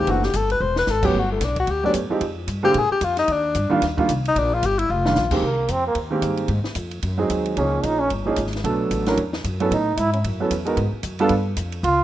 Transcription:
0.00 tenor saxophone G4
0.07 upright bass F#1, grand piano E3 A3 C4 D4 F#4, tenor saxophone F#4, ride
0.23 tenor saxophone G4, snare
0.33 upright bass G1, tenor saxophone A4, kick, hi-hat pedal, ride
0.50 tenor saxophone B4, ride
0.60 upright bass E1, tenor saxophone C5
0.76 tenor saxophone B4, snare
0.87 upright bass G#1, tenor saxophone A4, snare, hi-hat pedal
1.03 grand piano F#3 A3 B3 C#4 G4, tenor saxophone G4, kick, crash
1.14 upright bass G1, kick
1.19 tenor saxophone F#4
1.32 tenor saxophone A3
1.40 upright bass B1, tenor saxophone D4, kick, snare, hi-hat pedal, ride
1.56 tenor saxophone F#4, kick, ride
1.67 upright bass D2, tenor saxophone G4, kick, ride
1.84 grand piano F#3 A3 B3 C#4 G4, tenor saxophone D4
1.94 upright bass F#2, kick, hi-hat pedal, ride
2.10 grand piano F3 G#3 C4 D#4 G4, muted upright bass stroke
2.21 upright bass F2, kick, ride
2.47 upright bass G2, kick, hi-hat pedal, ride
2.63 grand piano D3 G#3 A#3 C4 G4, tenor saxophone G4
2.74 upright bass A#2, tenor saxophone G#4, kick, ride
2.90 tenor saxophone G4, muted upright bass stroke
3.01 upright bass F2, tenor saxophone F4, kick, hi-hat pedal, ride
3.17 tenor saxophone D#4, snare, ride
3.28 upright bass D#2, kick, ride
3.32 tenor saxophone D4
3.55 upright bass G2, kick, hi-hat pedal, ride
3.70 grand piano D#3 G3 A#3 D4 F4, muted upright bass stroke
3.82 upright bass D#2, kick, snare, ride
3.97 grand piano D#3 G3 A#3 D4 F4, kick
4.09 upright bass C2, kick, hi-hat pedal, ride
4.25 tenor saxophone D#4, ride
4.36 upright bass A#1, tenor saxophone D4, kick, ride
4.54 tenor saxophone F4
4.63 upright bass G1, tenor saxophone G4, kick, hi-hat pedal, ride
4.78 tenor saxophone E4, ride
4.90 upright bass F1, tenor saxophone F4
5.05 grand piano D#3 G3 A#3 D4 F4, snare
5.15 upright bass A#1, snare, hi-hat pedal
5.31 grand piano D#3 G#3 A#3 C4 G4, kick, crash
5.42 upright bass C2, trombone A#3, kick
5.68 upright bass F2, trombone C4, kick, hi-hat pedal, ride
5.87 trombone A#3
5.95 upright bass D#2, kick, ride
6.11 grand piano D#3 G#3 A#3 C4 G4
6.22 upright bass G2, kick, hi-hat pedal, ride
6.37 ride
6.48 upright bass G#2, kick, ride
6.64 muted upright bass stroke, snare
6.75 upright bass F2, kick, hi-hat pedal, ride
6.91 ride
7.03 upright bass F#2, kick, ride
7.18 grand piano F#3 G#3 C4 D#4 G#4
7.30 upright bass D#2, kick, hi-hat pedal, ride
7.46 ride
7.57 upright bass C#2, grand piano F3 A#3 C#4 D#4 G#4, trombone C#4, kick, ride
7.83 upright bass A#1, trombone D#4, kick, hi-hat pedal, ride
7.99 trombone C#4
8.10 upright bass G1, kick, ride
8.26 grand piano F3 A#3 C#4 D#4 G#4
8.36 upright bass G#1, kick, hi-hat pedal, ride
8.47 snare
8.53 snare, ride
8.64 upright bass B1, grand piano F#3 A3 B3 D4 A4, kick, ride
8.91 upright bass A1, kick, hi-hat pedal, ride
9.06 grand piano F#3 C#4 D4 E4 A#4, snare, ride
9.17 upright bass E2, kick, ride
9.33 snare
9.44 upright bass F#2, kick, hi-hat pedal, ride
9.60 grand piano F#3 B3 C#4 E4 A4, ride
9.71 upright bass A2, trombone D#4, kick, ride
9.97 upright bass G#2, trombone E4, kick, hi-hat pedal, ride
10.13 trombone C#4, ride
10.24 upright bass F#2, kick, ride
10.40 grand piano F#3 B3 C#4 E4 A4
10.51 upright bass E2, kick, hi-hat pedal, ride
10.65 grand piano G#3 B3 D#4 F#4 A#4, ride
10.77 upright bass G#2, kick, ride
10.93 muted upright bass stroke
11.03 upright bass F#2, kick, hi-hat pedal, ride
11.19 grand piano G3 B3 D4 F4 A4, ride
11.29 upright bass G2, kick, ride
11.57 upright bass F2, kick, hi-hat pedal, ride
11.72 ride
11.83 upright bass C#2, trombone F4, kick, ride

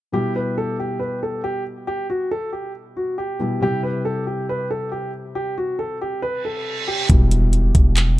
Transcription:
0.12 felt piano B2 G3 E4 G4, grand piano G4
0.36 grand piano B4
0.58 grand piano A4
0.80 grand piano G4
1.00 grand piano B4
1.23 grand piano A4
1.44 grand piano G4
1.87 grand piano G4
2.10 grand piano F#4
2.31 grand piano A4
2.53 grand piano G4
2.97 grand piano F#4
3.18 grand piano G4
3.39 felt piano B2 G3 E4 G4
3.61 felt piano C3 G3 E4 G4, grand piano G4
3.83 grand piano B4
4.05 grand piano A4
4.27 grand piano G4
4.49 grand piano B4
4.71 grand piano A4
4.92 grand piano G4
5.35 grand piano G4
5.58 grand piano F#4
5.79 grand piano A4
6.01 grand piano G4
6.22 grand piano B4, reverse cymbal
6.45 grand piano A4
6.88 grand piano G4
7.09 808-style bass E1, felt piano B2 G3 E4 G4, kick, closed hi-hat, impact
7.31 closed hi-hat
7.53 closed hi-hat
7.75 808-style bass E1, kick, closed hi-hat
7.97 clap, closed hi-hat

